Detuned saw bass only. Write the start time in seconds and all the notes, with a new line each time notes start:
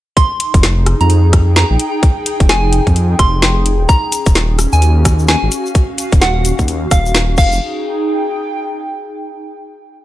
0.54 F1
1.01 F2
1.70 A#1
2.40 F1
2.87 F2
3.19 F1
3.80 D#1
4.26 D#1
4.73 D#2
5.43 G#1
6.12 D#1
6.59 D#2
6.91 D#1
7.38 F1